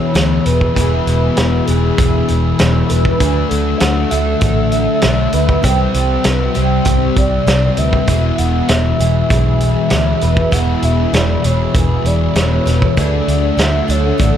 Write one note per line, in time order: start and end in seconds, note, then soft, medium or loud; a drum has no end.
0.00 0.12 E2 medium
0.00 0.13 E2 medium
0.00 0.73 E2 medium
0.00 0.13 B2 medium
0.00 0.14 B2 medium
0.00 0.74 B2 medium
0.00 0.15 E3 medium
0.00 0.78 E3 medium
0.00 0.13 B3 medium
0.00 0.17 E4 medium
0.00 0.13 G#4 medium
0.00 0.76 G#4 medium
0.00 3.16 G#4 medium
0.00 0.47 C#5 loud
0.00 3.16 E5 medium
0.00 3.16 B5 medium
0.00 12.92 E6 medium
0.13 0.37 D2 medium
0.13 0.73 E2 medium
0.13 0.74 B2 medium
0.13 0.77 E3 medium
0.13 0.45 C#5 medium
0.13 snare loud
0.13 closed hi-hat medium
0.17 0.75 B3 medium
0.45 0.68 E1 medium
0.45 0.76 B4 medium
0.45 closed hi-hat medium
0.61 kick medium
0.75 0.99 E1 medium
0.75 2.26 E2 medium
0.75 2.27 B2 medium
0.75 2.30 E3 medium
0.75 2.27 B3 medium
0.75 2.28 E4 medium
0.75 1.37 G#4 medium
0.75 2.27 G#4 medium
0.75 1.67 B4 loud
0.75 kick medium
0.75 closed hi-hat medium
1.07 1.29 E1 medium
1.07 closed hi-hat medium
1.37 1.60 E1 medium
1.37 1.68 F#4 medium
1.37 snare loud
1.37 closed hi-hat medium
1.66 1.90 E1 medium
1.66 2.56 E2 medium
1.66 2.57 B2 medium
1.66 2.60 E3 medium
1.66 2.28 G#4 medium
1.66 1.97 G#4 medium
1.66 closed hi-hat medium
1.98 2.21 E1 medium
1.98 2.59 G#4 medium
1.98 kick loud
1.98 closed hi-hat medium
2.28 2.52 E1 medium
2.28 2.56 E2 medium
2.28 2.57 B2 medium
2.28 2.58 E3 medium
2.28 2.58 B3 medium
2.28 2.59 E4 medium
2.28 2.57 G#4 medium
2.28 closed hi-hat medium
2.57 2.82 E1 medium
2.57 3.17 E2 medium
2.57 3.18 B2 medium
2.57 3.19 E3 medium
2.57 3.18 B3 medium
2.57 3.22 E4 medium
2.57 3.19 G#4 medium
2.57 2.89 C#5 medium
2.57 snare loud
2.57 closed hi-hat medium
2.89 3.13 E1 medium
2.89 3.20 B4 medium
2.89 closed hi-hat medium
3.05 kick medium
3.19 3.43 D2 medium
3.19 4.70 D3 medium
3.19 4.71 F#3 medium
3.19 4.71 A3 medium
3.19 4.72 D4 medium
3.19 4.71 E4 medium
3.19 5.61 A4 medium
3.19 3.50 B4 loud
3.19 5.61 F#5 medium
3.19 3.81 G#5 medium
3.19 kick medium
3.19 closed hi-hat medium
3.49 3.73 D2 medium
3.49 3.79 A4 medium
3.49 closed hi-hat medium
3.78 4.03 D2 medium
3.78 4.11 F#4 medium
3.78 4.10 F#5 loud
3.78 snare loud
3.78 closed hi-hat medium
4.10 4.34 D2 medium
4.10 5.00 D3 medium
4.10 5.01 A3 medium
4.10 5.00 D4 medium
4.10 4.40 A4 medium
4.10 5.66 E5 loud
4.10 closed hi-hat medium
4.41 4.86 A1 medium
4.41 5.02 A4 medium
4.41 kick loud
4.41 closed hi-hat medium
4.72 5.00 D3 medium
4.72 5.02 F#3 medium
4.72 5.02 A3 medium
4.72 5.02 D4 medium
4.72 5.05 E4 medium
4.72 closed hi-hat medium
5.02 5.26 B1 medium
5.02 5.61 D3 medium
5.02 5.62 A3 medium
5.02 5.63 D4 medium
5.02 5.66 E4 medium
5.02 5.32 C#5 medium
5.02 snare loud
5.02 closed hi-hat medium
5.33 5.56 D2 medium
5.33 5.64 B4 medium
5.33 closed hi-hat medium
5.49 kick medium
5.62 5.86 C2 medium
5.62 7.14 C3 loud
5.62 7.18 E3 medium
5.62 8.04 G3 medium
5.62 7.15 G3 medium
5.62 6.24 G4 medium
5.62 5.93 C5 loud
5.62 12.91 E5 medium
5.62 kick medium
5.62 closed hi-hat medium
5.66 7.16 C4 medium
5.66 7.16 E4 medium
5.94 6.16 C2 medium
5.94 6.28 C5 loud
5.94 closed hi-hat medium
6.24 6.47 C2 medium
6.24 6.54 F#4 medium
6.24 6.58 B4 loud
6.24 snare loud
6.24 closed hi-hat medium
6.54 6.78 C2 medium
6.54 7.44 C3 medium
6.54 7.45 G3 medium
6.54 7.44 C4 medium
6.54 6.85 G4 medium
6.54 6.86 C5 medium
6.54 closed hi-hat medium
6.85 7.08 C2 medium
6.85 7.47 G4 medium
6.85 7.15 C5 medium
6.85 kick medium
6.85 closed hi-hat medium
7.16 7.39 C2 medium
7.16 7.46 C3 medium
7.16 7.48 E3 medium
7.16 7.45 G3 medium
7.16 7.45 C4 medium
7.16 7.50 E4 medium
7.16 7.80 D5 loud
7.16 kick medium
7.16 closed hi-hat medium
7.47 7.69 C2 medium
7.47 8.06 C3 medium
7.47 8.08 E3 medium
7.47 8.07 G3 medium
7.47 8.07 C4 medium
7.47 8.09 E4 medium
7.47 7.76 C5 medium
7.47 snare loud
7.47 closed hi-hat medium
7.77 8.00 D2 medium
7.77 8.07 B4 medium
7.77 8.39 E5 loud
7.77 closed hi-hat medium
7.93 kick medium
8.07 8.30 E1 medium
8.07 9.58 E2 medium
8.07 9.58 B2 loud
8.07 9.62 E3 medium
8.07 9.59 G#3 medium
8.07 9.59 B3 medium
8.07 9.59 E4 medium
8.07 12.92 G#4 medium
8.07 8.68 G#4 medium
8.07 12.93 B5 medium
8.07 kick medium
8.07 closed hi-hat medium
8.38 8.61 E1 medium
8.38 8.70 F#5 loud
8.38 closed hi-hat medium
8.68 8.92 E1 medium
8.68 8.99 F#4 medium
8.68 9.29 E5 loud
8.68 snare loud
8.68 closed hi-hat medium
8.98 9.22 E1 medium
8.98 9.88 E2 medium
8.98 9.89 B2 medium
8.98 9.92 E3 medium
8.98 9.30 G#4 medium
8.98 closed hi-hat medium
9.29 9.74 B1 medium
9.29 9.91 G#4 medium
9.29 10.54 E5 loud
9.29 kick medium
9.29 closed hi-hat medium
9.60 9.88 E2 medium
9.60 9.89 B2 medium
9.60 9.91 E3 medium
9.60 9.89 G#3 medium
9.60 9.89 B3 medium
9.60 9.92 E4 medium
9.60 closed hi-hat medium
9.89 10.13 D2 medium
9.89 10.49 E2 medium
9.89 10.49 B2 medium
9.89 10.51 E3 medium
9.89 10.53 E4 medium
9.89 10.21 C#5 medium
9.89 snare loud
9.89 closed hi-hat medium
10.21 10.44 E1 medium
10.21 10.51 B4 medium
10.21 closed hi-hat medium
10.37 kick medium
10.51 10.74 E1 medium
10.51 12.02 E2 medium
10.51 12.02 B2 medium
10.51 12.07 E3 medium
10.51 12.03 G#3 medium
10.51 12.03 B3 medium
10.51 12.04 E4 medium
10.51 11.13 G#4 medium
10.51 10.85 F#5 loud
10.51 kick medium
10.51 closed hi-hat medium
10.82 11.05 E1 medium
10.82 11.16 E5 medium
10.82 closed hi-hat medium
11.13 11.35 E1 medium
11.13 11.43 F#4 medium
11.13 11.47 D5 loud
11.13 snare loud
11.13 closed hi-hat medium
11.43 11.66 E1 medium
11.43 12.32 E2 medium
11.43 12.34 B2 medium
11.43 12.36 E3 medium
11.43 11.73 G#4 medium
11.43 11.75 C#5 medium
11.43 closed hi-hat medium
11.74 11.96 E1 medium
11.74 12.35 G#4 medium
11.74 12.08 B4 loud
11.74 kick loud
11.74 closed hi-hat medium
12.04 12.27 E1 medium
12.04 12.34 E2 medium
12.04 12.34 B2 medium
12.04 12.36 E3 medium
12.04 12.34 G#3 medium
12.04 12.34 B3 medium
12.04 12.38 E4 medium
12.04 12.40 D5 medium
12.04 closed hi-hat medium
12.35 12.58 E1 medium
12.35 12.94 E2 medium
12.35 12.95 B2 medium
12.35 12.97 E3 medium
12.35 12.95 G#3 medium
12.35 12.95 B3 medium
12.35 12.99 E4 medium
12.35 12.65 C#5 medium
12.35 12.99 C#5 medium
12.35 snare loud
12.35 closed hi-hat medium
12.66 12.88 E1 medium
12.66 12.96 B4 medium
12.66 snare soft
12.66 closed hi-hat medium
12.82 kick medium
12.94 14.37 D3 medium
12.94 14.37 F#3 medium
12.94 14.37 A3 medium
12.94 13.57 G#4 medium
12.94 14.37 F#5 medium
12.94 14.37 E6 medium
12.94 kick medium
12.94 closed hi-hat medium
12.98 13.20 D2 medium
12.98 14.37 A3 loud
12.98 14.37 D4 medium
12.98 14.37 E4 loud
12.98 13.61 D5 loud
13.28 13.50 D2 medium
13.28 closed hi-hat medium
13.57 13.80 D2 medium
13.57 13.88 F#4 medium
13.57 13.92 E5 loud
13.57 snare loud
13.57 closed hi-hat medium
13.87 14.11 D2 medium
13.87 14.37 D3 medium
13.87 14.37 A3 medium
13.87 14.37 D4 medium
13.87 14.17 A4 medium
13.87 14.21 C#5 medium
13.87 closed hi-hat medium
14.18 14.37 A1 medium
14.18 14.37 A4 medium
14.18 14.37 D5 loud
14.18 kick loud
14.18 closed hi-hat medium